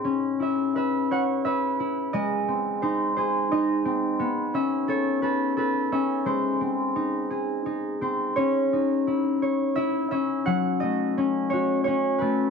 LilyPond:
\new Staff \with { instrumentName = "Harp" } { \time 3/4 \key cis \minor \tempo 4 = 86 << { r8 e''8 e''8 fis''8 e''4 | dis''4 bis'8 bis'8 dis''8. r16 | r8 e''8 cis''8 a'8 b'8 e''8 | bis'2 r8 bis'8 |
cis''2 e''8 e''8 | fis''8 dis''4 cis''8 cis''8 b'8 | } \\ { cis'8 e'8 b'8 cis''8 b'8 e'8 | gis8 bis8 dis'8 gis'8 dis'8 bis8 | b8 cis'8 a'8 b'8 a'8 cis'8 | gis8 bis8 dis'8 gis'8 dis'8 bis8 |
cis'8 dis'8 e'8 cis''8 e'8 cis'8 | fis8 a8 cis'8 fis'8 cis'8 a8 | } >> }